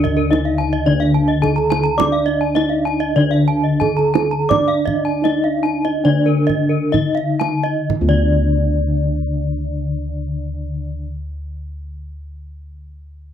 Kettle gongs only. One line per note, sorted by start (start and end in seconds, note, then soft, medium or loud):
0.00 0.85 D2 loud
0.00 1.39 D4 medium
0.31 0.39 D#4 soft
0.87 2.52 D3 medium
1.43 1.51 D#4 soft
1.98 3.77 D5 medium
2.56 2.64 D#4 medium
3.16 5.21 D3 medium
3.82 3.90 D#4 soft
4.50 6.89 D5 medium
5.26 5.34 D#4 soft
6.05 8.86 D3 medium
6.94 7.02 D#4 soft
8.01 10.98 D2 medium